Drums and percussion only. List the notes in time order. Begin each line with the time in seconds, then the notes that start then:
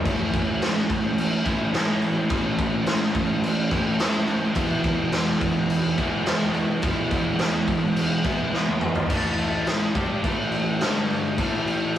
0.05 kick, crash
0.34 kick, crash
0.62 snare, crash
0.77 snare
0.90 kick, crash
1.18 crash
1.45 kick, crash
1.74 snare, crash
2.02 crash
2.30 kick, crash
2.58 kick, crash
2.86 snare, crash
3.02 snare
3.15 kick, crash
3.43 crash
3.71 kick, crash
3.99 snare, crash
4.28 crash
4.55 kick, crash
4.84 kick, crash
5.12 snare, crash
5.28 snare
5.41 kick, crash
5.70 crash
5.98 kick, crash
6.26 snare, crash
6.54 crash
6.82 kick, crash
7.11 kick, crash
7.39 snare, crash
7.68 kick, crash
7.96 crash
8.24 kick, crash
8.54 snare
8.67 high tom
8.81 mid tom
8.95 floor tom
9.10 kick, crash
9.38 crash
9.66 snare, crash
9.95 kick, crash
10.24 kick, crash
10.52 crash
10.81 snare, crash
11.10 crash
11.38 kick, crash
11.67 crash